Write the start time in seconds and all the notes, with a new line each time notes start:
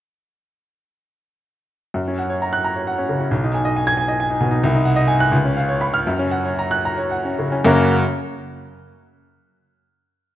1.94 F#2
2.08 C#4
2.19 F#5
2.30 C#5
2.42 A#5
2.53 F#6
2.64 A#5
2.76 C#5
2.87 F#5
2.98 C#4
3.09 C#3
3.20 C#4
3.31 B1
3.44 D#4
3.54 G#5
3.65 D#5
3.76 G#5
3.87 G#6
3.97 G#5
4.08 D#5
4.20 G#5
4.30 D#4
4.41 B2
4.51 D#4
4.63 C2
4.75 D#4
4.85 F#5
4.96 D#5
5.08 G#5
5.20 F#6
5.32 C#2
5.45 C#4
5.57 F5
5.69 C#5
5.81 B5
5.94 F6
6.07 F#2
6.19 C#4
6.31 F#5
6.45 C#5
6.59 A#5
6.71 F#6
6.85 A#5
6.98 C#5
7.11 F#5
7.25 C#4
7.39 C#3
7.52 C#4
7.65 F#2 C#3 A#3 C#4 F#4 A#4